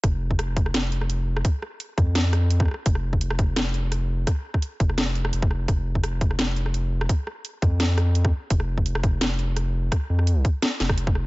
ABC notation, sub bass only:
X:1
M:4/4
L:1/8
Q:"Swing 16ths" 1/4=170
K:Cphr
V:1 name="Sub bass" clef=bass
F,,,4 F,,,4 | z3 F,,4 z | F,,,4 F,,,4 | z3 F,,,3 F,,,2 |
F,,,4 F,,,4 | z3 F,,4 z | F,,,4 F,,,4 | z F,,2 z2 F,,,3 |]